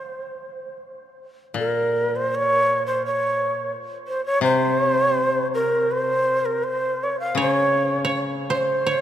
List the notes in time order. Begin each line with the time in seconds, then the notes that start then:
Already playing: C5
1.54 A#2
1.59 A#4
2.16 C5
2.35 C#5
2.87 C5
3.06 C#5
4.08 C5
4.25 C#5
4.41 C3 C5
5.55 A#4
5.91 C5
6.45 A#4
6.64 C5
7.03 C#5
7.20 F5
7.35 C#3 C#5
7.40 C#5
8.05 C#5
8.50 C5
8.54 C5 C#5
8.87 C#5